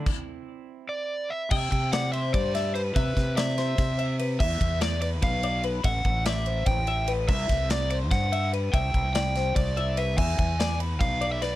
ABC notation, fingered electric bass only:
X:1
M:7/8
L:1/8
Q:1/4=145
K:Clyd
V:1 name="Fingered electric bass" clef=bass
z6 z | C, C,3 G,,3 | C, C,3 C,3 | E,, E,,3 B,,,3 |
A,,, A,,,3 A,,,3 | C,, C,,3 G,,3 | C,, C,,3 C,,3 | E,, E,,3 B,,,3 |]